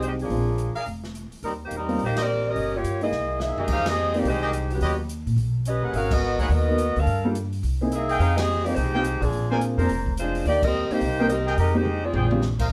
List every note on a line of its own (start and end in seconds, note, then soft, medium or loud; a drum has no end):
0.00 0.27 C2 medium
0.00 0.28 G#3 medium
0.00 0.28 C4 medium
0.00 0.28 D#4 medium
0.00 0.28 G4 medium
0.00 closed hi-hat soft
0.04 0.12 G#3 medium
0.04 0.12 D#4 medium
0.04 0.12 G4 medium
0.04 0.11 C5 medium
0.19 0.74 F3 medium
0.19 0.74 A#3 medium
0.19 0.74 D4 medium
0.19 0.73 G#4 medium
0.19 open hi-hat soft
0.30 0.72 A#1 medium
0.30 0.46 G#3 soft
0.30 0.46 C4 soft
0.30 0.46 D4 soft
0.30 0.46 F4 medium
0.30 open hi-hat soft
0.58 closed hi-hat medium
0.75 0.83 G#4 medium
0.75 0.83 A#4 medium
0.75 0.83 D5 medium
0.75 0.83 F5 loud
0.75 muted upright bass stroke soft
0.75 open hi-hat soft
0.86 1.29 F1 medium
0.86 open hi-hat soft
1.04 snare soft
1.15 closed hi-hat soft
1.32 muted upright bass stroke soft
1.32 open hi-hat soft
1.43 1.69 D#2 medium
1.43 1.52 G3 medium
1.43 1.52 C4 medium
1.43 1.52 D#4 medium
1.43 1.52 A#4 medium
1.43 open hi-hat soft
1.65 1.73 A#3 medium
1.65 1.73 D#4 medium
1.65 1.73 G4 medium
1.65 1.73 C5 medium
1.71 1.97 E2 medium
1.71 closed hi-hat medium
1.77 2.02 G3 medium
1.77 2.02 C4 medium
1.77 2.02 D#4 medium
1.77 2.02 A#4 medium
1.88 1.98 G3 medium
1.88 1.98 A#3 medium
1.88 1.98 C4 medium
1.88 1.98 F4 medium
1.88 open hi-hat soft
1.99 2.53 A#1 medium
1.99 open hi-hat soft
2.05 2.19 A#3 medium
2.05 2.19 D#4 medium
2.05 2.19 G4 medium
2.05 2.19 C5 medium
2.16 2.24 G4 medium
2.16 2.24 A#4 medium
2.16 2.24 C5 medium
2.16 2.24 D#5 loud
2.16 snare medium
2.16 ride medium
2.22 2.46 C4 medium
2.22 2.46 G4 medium
2.22 2.46 A#4 medium
2.22 2.46 D5 loud
2.49 2.75 C#4 medium
2.49 2.75 G4 medium
2.49 2.76 A#4 medium
2.49 2.75 D#5 loud
2.56 2.82 G1 medium
2.56 open hi-hat soft
2.77 3.03 A#3 medium
2.77 3.03 F4 medium
2.77 3.03 G4 medium
2.77 3.03 C#5 medium
2.84 3.10 G2 medium
2.84 closed hi-hat soft
3.01 3.11 G#3 medium
3.01 3.12 A#3 medium
3.01 3.39 A#3 medium
3.01 3.11 D#4 medium
3.01 3.12 E4 medium
3.01 3.39 E4 medium
3.01 3.39 G#4 medium
3.01 3.39 D#5 medium
3.01 open hi-hat soft
3.11 3.54 C2 medium
3.11 snare soft
3.40 3.68 A#3 medium
3.40 3.68 D#4 medium
3.40 3.67 G#4 medium
3.40 3.68 E5 medium
3.40 snare medium
3.57 3.94 G4 medium
3.57 3.95 G#4 medium
3.57 3.94 A#4 medium
3.57 3.94 D#5 medium
3.57 muted upright bass stroke soft
3.57 floor tom medium
3.68 4.22 F2 medium
3.68 kick medium
3.68 crash medium
3.72 3.88 D#4 medium
3.72 3.88 G#4 medium
3.72 3.88 C5 medium
3.72 3.88 F5 loud
3.86 4.16 C4 medium
3.86 4.16 G4 medium
3.86 4.16 G#4 medium
3.86 4.16 D#5 loud
3.86 snare medium
3.86 ride medium
4.14 4.24 G#3 medium
4.14 4.24 A#3 medium
4.14 4.27 A#3 medium
4.14 4.24 C4 medium
4.14 4.24 D#4 medium
4.14 4.24 G4 medium
4.14 4.27 G4 medium
4.14 4.27 D5 medium
4.14 open hi-hat soft
4.18 4.27 D#4 medium
4.24 4.78 C2 medium
4.24 open hi-hat soft
4.28 4.69 G#3 medium
4.28 4.69 D#4 medium
4.28 4.69 G4 medium
4.28 4.69 C5 loud
4.42 4.50 G4 medium
4.42 4.50 G#4 medium
4.42 4.50 A#4 medium
4.42 4.50 D#5 loud
4.53 closed hi-hat medium
4.70 5.00 C#3 medium
4.70 5.00 F#3 medium
4.70 5.00 B3 medium
4.70 5.00 G4 medium
4.70 open hi-hat soft
4.81 5.24 D#2 medium
4.81 4.93 G4 medium
4.81 4.93 B4 medium
4.81 4.94 C#5 medium
4.81 4.93 D#5 loud
4.81 open hi-hat medium
5.09 closed hi-hat medium
5.27 5.36 A#2 medium
5.27 open hi-hat soft
5.36 5.79 B1 medium
5.36 open hi-hat soft
5.65 5.93 C#4 medium
5.65 5.93 G4 medium
5.65 5.93 B4 medium
5.65 5.94 D#5 medium
5.65 closed hi-hat medium
5.82 5.93 D#2 medium
5.82 6.20 G#4 medium
5.82 6.20 A#4 medium
5.82 6.20 B4 medium
5.82 6.20 F#5 loud
5.93 6.36 G#1 medium
5.93 6.13 C#4 medium
5.93 6.11 F#4 medium
5.93 6.12 A#4 medium
5.93 6.13 F5 loud
5.93 open hi-hat soft
6.11 6.40 B3 medium
6.11 6.40 F#4 medium
6.11 6.40 A#4 medium
6.11 6.40 D#5 loud
6.11 kick medium
6.11 crash medium
6.39 6.49 D#2 medium
6.39 6.50 A#3 medium
6.39 6.51 D#4 medium
6.39 6.51 F#4 medium
6.39 6.46 G#4 medium
6.39 6.46 A#4 medium
6.39 6.46 B4 medium
6.39 6.51 C#5 medium
6.39 6.46 F#5 loud
6.39 kick medium
6.39 open hi-hat soft
6.49 6.92 D#2 medium
6.49 6.97 B3 medium
6.49 6.97 F#4 medium
6.49 6.97 A#4 medium
6.49 6.97 D#5 loud
6.49 open hi-hat soft
6.68 6.78 G#3 medium
6.68 6.78 B3 medium
6.68 6.78 D#4 soft
6.68 6.78 F#4 soft
6.68 6.78 A#4 medium
6.78 closed hi-hat medium
6.96 7.06 D2 medium
6.96 7.26 D4 medium
6.96 7.26 A#4 medium
6.96 open hi-hat soft
7.00 7.26 A4 medium
7.00 7.26 F5 medium
7.07 7.60 G2 medium
7.07 open hi-hat soft
7.25 7.34 G3 medium
7.25 7.34 A#3 medium
7.25 7.34 D4 medium
7.25 7.34 F4 medium
7.25 7.34 A4 medium
7.35 closed hi-hat medium
7.53 open hi-hat soft
7.63 8.17 C2 medium
7.63 open hi-hat soft
7.81 7.91 A#3 medium
7.81 7.91 C4 medium
7.81 7.91 D#4 medium
7.81 7.91 E4 medium
7.81 7.91 G#4 medium
7.92 8.19 A#3 medium
7.92 8.18 D#4 medium
7.92 8.18 G#4 medium
7.92 8.19 E5 medium
7.92 closed hi-hat medium
8.09 8.46 G#4 medium
8.09 8.46 D#5 medium
8.09 8.45 F5 medium
8.09 8.45 G5 loud
8.09 open hi-hat soft
8.19 8.73 F2 medium
8.19 8.36 D#4 medium
8.19 8.35 G#4 medium
8.19 8.36 C5 medium
8.19 8.36 F5 loud
8.19 open hi-hat medium
8.36 8.65 C4 medium
8.36 8.63 G4 medium
8.36 8.65 G#4 medium
8.36 8.65 D#5 medium
8.36 snare medium
8.36 ride medium
8.64 8.75 G#3 medium
8.64 8.75 A#3 medium
8.64 8.75 C4 medium
8.64 8.74 D#4 medium
8.64 8.76 D#4 medium
8.64 8.76 F4 medium
8.64 8.73 G4 medium
8.64 8.76 G4 medium
8.64 8.76 D5 medium
8.64 open hi-hat soft
8.74 9.19 C2 medium
8.74 9.21 G#3 medium
8.74 9.21 D#4 medium
8.74 9.21 G4 medium
8.74 9.21 C5 medium
8.74 open hi-hat soft
8.94 9.04 G#3 medium
8.94 9.04 C4 medium
8.94 9.04 D#4 medium
8.94 9.04 F4 medium
8.94 9.04 G4 medium
8.94 9.01 G#4 medium
8.94 9.01 D#5 medium
8.94 9.01 F5 medium
8.94 9.01 G5 loud
9.04 closed hi-hat medium
9.21 9.31 B1 medium
9.21 9.50 F3 medium
9.21 9.50 C4 medium
9.21 9.50 D4 medium
9.21 9.51 G#4 medium
9.21 open hi-hat soft
9.32 9.74 A#1 medium
9.32 open hi-hat soft
9.50 9.77 A#3 medium
9.50 9.77 C4 medium
9.50 9.77 D4 medium
9.50 9.77 F4 medium
9.50 9.77 G#4 medium
9.50 9.58 A#4 medium
9.50 9.58 C5 medium
9.50 9.57 D5 medium
9.50 9.57 G#5 loud
9.61 closed hi-hat medium
9.78 9.88 F2 medium
9.78 9.88 A#3 medium
9.78 9.88 C4 medium
9.78 9.88 D4 medium
9.78 9.88 F4 medium
9.78 9.88 G#4 medium
9.78 10.15 A#4 medium
9.78 10.15 C5 medium
9.78 10.15 D5 medium
9.78 10.15 A#5 loud
9.78 open hi-hat soft
9.89 10.42 F1 medium
9.89 open hi-hat soft
10.06 kick medium
10.17 10.44 G#3 medium
10.17 10.44 D4 medium
10.17 10.44 F4 medium
10.17 10.45 C5 medium
10.17 closed hi-hat medium
10.35 open hi-hat soft
10.45 10.88 D#2 medium
10.45 10.62 A#3 medium
10.45 10.62 D#4 medium
10.45 10.63 G4 medium
10.45 10.63 D5 loud
10.45 open hi-hat medium
10.63 10.90 C4 medium
10.63 10.90 G4 medium
10.63 10.90 A#4 medium
10.63 10.90 D#5 loud
10.63 kick medium
10.63 crash medium
10.90 11.00 A#3 medium
10.90 11.30 A#3 medium
10.90 11.01 C4 medium
10.90 11.01 D4 medium
10.90 11.01 D#4 medium
10.90 11.30 D#4 medium
10.90 11.01 G4 medium
10.90 11.28 G4 medium
10.90 11.30 C5 loud
10.90 muted upright bass stroke soft
10.90 open hi-hat soft
11.01 11.55 C2 medium
11.01 open hi-hat soft
11.19 11.29 A#3 medium
11.19 11.29 C4 medium
11.19 11.29 D4 medium
11.19 11.29 D#4 medium
11.19 11.26 A#4 medium
11.19 11.29 A#4 medium
11.19 11.26 C5 medium
11.19 11.26 D#5 medium
11.19 11.26 G5 medium
11.29 11.56 C4 medium
11.29 11.56 G4 medium
11.29 11.56 A#4 medium
11.29 11.56 D#5 medium
11.29 closed hi-hat medium
11.46 11.54 G#4 medium
11.46 11.54 A#4 medium
11.46 11.54 D#5 medium
11.46 11.54 G5 loud
11.46 snare soft
11.58 12.11 F2 medium
11.58 11.75 G#3 medium
11.58 11.75 D#4 medium
11.58 11.75 G4 medium
11.58 11.75 A#4 medium
11.58 open hi-hat medium
11.74 11.84 G#3 medium
11.74 12.05 G#3 medium
11.74 11.84 A#3 medium
11.74 11.85 C4 medium
11.74 11.84 D#4 medium
11.74 12.05 D#4 medium
11.74 11.84 G4 loud
11.74 12.05 G4 medium
11.74 12.05 C5 medium
11.85 mid tom medium
12.04 12.43 C4 medium
12.04 12.43 F4 medium
12.04 12.43 G#4 medium
12.04 12.43 D5 medium
12.13 12.67 A#1 medium
12.13 12.26 G#4 medium
12.13 12.26 C5 medium
12.13 12.26 D5 medium
12.13 12.26 G5 medium
12.13 floor tom medium
12.31 12.41 G#3 medium
12.31 12.41 C4 medium
12.31 12.42 D4 medium
12.31 12.41 F4 medium
12.31 12.42 G4 medium
12.31 mid tom medium
12.42 snare medium
12.59 12.67 A#4 medium
12.59 12.67 C5 medium
12.59 12.67 D#5 medium
12.59 12.67 F5 medium
12.59 kick medium
12.59 crash medium